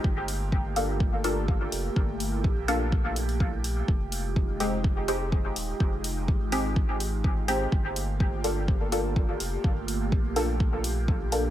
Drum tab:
HH |--o---o---o---o-|--o---o---oo--o-|--o---o---o---o-|--o---o---o---o-|
BD |o---o---o---o---|o---o---o---o---|o---o---o---o---|o---o---o---o---|

HH |--o---o---o---o-|--o---o---o---o-|
BD |o---o---o---o---|o---o---o---o---|